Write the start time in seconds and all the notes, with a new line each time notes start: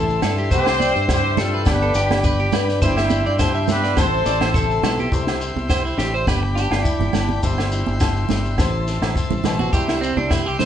Already playing: A1 A2 A3 C4 E4 A4 E5 A5 C6
0.10 shekere
0.22 G2 E4 A4, snare, low conga, low agogo, shekere
0.38 G4, shekere
0.50 C2 C3 C4 G4 C5 G5, kick, shekere
0.66 snare, low agogo, shekere
0.80 G4 D5, high conga, shekere
0.95 G2 C5, shekere
1.09 G3 C4 E4 G4 C5, kick, snare, low agogo, shekere
1.13 G4
1.24 C5
1.37 F4 G4 A4, snare, low conga, shekere
1.41 A3 F4 A4
1.54 B4
1.65 G1 G3 D4 G4 D5 B5, kick, snare, low agogo, shekere
1.70 B3 G4 B4
1.82 A4, shekere
1.94 G1 G4, snare, shekere
2.11 snare, high conga, low agogo
2.24 D4 G4 B4, kick, shekere
2.39 G4, shekere
2.52 G2 B4, snare, low conga, low agogo, shekere
2.69 snare, shekere
2.82 G1 G3 E4 G4 C5 E5 C6, kick, shekere
2.97 E5, snare, low agogo, shekere
3.10 E4, high conga, shekere
3.26 G2 D5, shekere
3.39 F3 G3 E4 G4 C5, kick, snare, low agogo, shekere
3.55 E5, shekere
3.68 G3 B3 G4 B4, snare, low conga, shekere
3.84 D5, snare, shekere
3.97 A1 A2 C4 A4 C5 A5, kick, snare, high conga, low agogo, shekere
4.14 shekere
4.26 A1 E4 D5, snare, shekere
4.41 C5, snare, high conga, low agogo
4.54 A3 C4 A4, kick, shekere
4.71 shekere
4.83 B1 E4 A4, snare, low conga, low agogo, shekere
4.99 G4, high conga, shekere
5.12 C2 C3 C5 E5 G5 C6, kick, shekere
5.27 snare, low agogo, shekere
5.41 E4, shekere
5.56 C2, high conga, shekere
5.69 C5, kick, snare, low agogo, shekere
5.85 E4, shekere
5.98 A1 G3 G4, snare, shekere
6.14 C5, shekere
6.27 G1 G3 G4 B4 D5 G5 B5, kick, snare, low agogo, shekere
6.43 muted clean electric guitar stroke
6.55 D4 G4, snare, shekere
6.70 G1 F4, snare, low agogo
6.84 E4, kick, shekere
6.99 G1, high conga, low conga, shekere
7.13 G1 D4, snare, low conga, low agogo, shekere
7.29 high conga, shekere
7.43 G1 G3 C5 E5 C6, kick, shekere
7.58 snare, low agogo, shekere
7.72 E4, shekere
7.86 G1, high conga, shekere
8.00 F3, kick, snare, low agogo, shekere
8.16 shekere
8.29 G1 G3, snare, low conga, shekere
8.45 shekere
8.58 A1 A2 C5 A5, kick, snare, low agogo, shekere
8.88 C4, snare, shekere
9.01 A1, snare, low agogo
9.16 A2, kick, shekere
9.30 A1, high conga, low conga, shekere
9.44 A1 B2, snare, low conga, low agogo, shekere
9.59 F#4, high conga, shekere
9.73 C2 C3 G3 E4 G4 E5 G5, kick, shekere
9.88 E4, snare, low agogo, shekere
10.01 C4 E4, shekere
10.17 C2 D4, high conga, shekere
10.30 E4, kick, snare, low agogo, shekere
10.46 G4, shekere
10.59 C3 G3 C5, snare, low conga, shekere